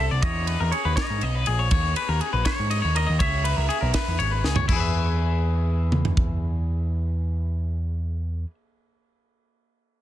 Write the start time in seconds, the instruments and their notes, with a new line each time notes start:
Already playing: clean electric guitar A4
0.11 picked electric bass C2, clean electric guitar D5
0.22 picked electric bass E2, clean electric guitar C#5 D#5, kick, ride
0.47 clean electric guitar B4, ride
0.60 picked electric bass E2, clean electric guitar A#4
0.71 clean electric guitar G#4 C#5, ride
0.85 picked electric bass D#2, clean electric guitar B4
0.96 clean electric guitar C#5 D#5, kick, snare, ride
1.10 picked electric bass G#2
1.21 picked electric bass B1, clean electric guitar D#5, ride
1.35 clean electric guitar B4
1.46 picked electric bass A#1, clean electric guitar G#4, ride
1.59 clean electric guitar C#5
1.71 picked electric bass D#2, clean electric guitar C#5, kick, ride
1.96 clean electric guitar B4, ride
2.09 picked electric bass D#2, clean electric guitar A#4
2.21 clean electric guitar G#4, ride
2.33 picked electric bass A#1, clean electric guitar B4
2.45 clean electric guitar C#5, kick, snare, ride
2.59 picked electric bass G#2
2.70 clean electric guitar D#5, ride
2.82 picked electric bass D#2, clean electric guitar C#5
2.95 clean electric guitar A#4 D#5, ride
3.07 picked electric bass D#2, clean electric guitar D#5
3.19 picked electric bass C#2, clean electric guitar C#5 E5, kick, ride
3.44 clean electric guitar B4, ride
3.57 picked electric bass C#2, clean electric guitar A#4
3.69 clean electric guitar G#4, ride
3.81 picked electric bass B1, clean electric guitar A#4
3.94 clean electric guitar B4, kick, snare, ride
4.08 picked electric bass E2
4.19 picked electric bass G#1, clean electric guitar C#5, ride
4.31 clean electric guitar B4
4.43 picked electric bass C#2, clean electric guitar G#4, snare
4.56 clean electric guitar C#5, floor tom
4.68 picked electric bass E2, clean electric guitar E4, kick, crash
4.72 clean electric guitar G#4 B4
4.80 clean electric guitar E5
5.92 mid tom
6.05 floor tom
6.17 kick